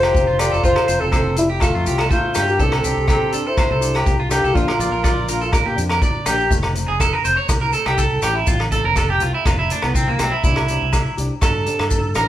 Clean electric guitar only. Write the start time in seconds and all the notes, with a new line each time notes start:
0.03 G4
0.27 F4
0.39 G4
0.52 A4
0.64 F4
0.76 A4
0.88 C5
1.01 A4
1.13 C5
1.50 G4
1.61 A4
1.75 F4
1.87 G4
2.00 A4
2.11 C5
2.36 G4
2.60 A4
2.85 G4
3.08 G4
3.33 A4
3.47 A4
3.59 C5
3.72 A4
3.95 G4
4.20 F4
4.31 G4
4.44 A4
4.56 F4
4.68 A#4
4.80 D5
4.92 A#4
5.04 D5
5.29 A#4
5.41 A4
5.53 A#4
5.66 G4
5.91 A#4
6.03 D5
6.27 G4
6.88 G#4
7.00 A4
7.13 A#4
7.25 C5
7.37 C#5
7.49 muted clean electric guitar stroke
7.61 A#4
7.73 A4
7.87 G4
7.98 A4
8.23 G4
8.35 E4
8.48 F4
8.72 A4
8.85 A#4
8.97 A4
9.10 G4
9.22 F4
9.34 E4
9.46 F4
9.59 E4
9.71 D4
9.83 B3
9.95 C4
10.08 A#3
10.20 C4
10.32 E4
10.44 E4
11.43 A4
12.16 A#4